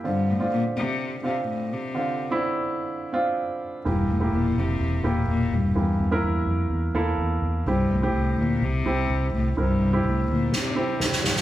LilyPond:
<<
  \new Staff \with { instrumentName = "Grand piano" } { \time 4/4 \key d \minor \tempo 4 = 126 <c' d' f'>8. <c' d' f'>4. r16 <c' d' f'>4~ <c' d' f'>16 r16 | <c' d' f'>8. <c' d' e'>4. r16 <c' d' f'>4~ <c' d' f'>16 r16 | <bes e' g'>8. <bes e' g'>4. r16 <bes e' g'>4~ <bes e' g'>16 r16 | <bes e' g'>8. <bes e' bes'>4. r16 <bes e' a'>4~ <bes e' a'>16 r16 |
<c' e' g'>8. <c' e' g'>4. r16 <c' e' g'>4~ <c' e' g'>16 r16 | <c' e' bes'>8. <c' e' g'>4. r16 <c' e' g'>4~ <c' e' g'>16 r16 | }
  \new Staff \with { instrumentName = "Grand piano" } { \clef bass \time 4/4 \key d \minor d4. r2 r8 | d4. r2 r8 | e4. r2 r8 | e4. r2 r8 |
c4. r2 r8 | c4. r2 r8 | }
  \new Staff \with { instrumentName = "Cello" } { \clef bass \time 4/4 \key d \minor g,8 a,8 bes,8 c4 c8 a,8 c8~ | c4 r2. | g,8 a,8 bes,8 c4 bes,8 bes,8 g,8~ | g,4 r2. |
g,8 a,4 bes,8 c4. a,8 | g,4 a,8 bes,8 c4. r8 | }
  \new Staff \with { instrumentName = "Fingered electric bass" } { \clef bass \time 4/4 \key d \minor r1 | r1 | e,,8 e,,8 e,,8 f,,8 e,,8 e,,8 e,,8 e,,8 | e,8 e,8 e,8 f,8 e,8 e,8 e,8 e,8 |
c,8 c,8 c,8 d,8 c,8 c,8 c,8 c,8 | c,8 c,8 c,8 d,8 r2 | }
  \new DrumStaff \with { instrumentName = "Drums" } \drummode { \time 4/4 r4 r4 r4 r4 | r4 r4 r4 r4 | r4 r4 r4 r4 | r4 r4 r4 r4 |
r4 r4 r4 r4 | r4 r4 sn4 sn16 sn16 sn16 sn16 | }
>>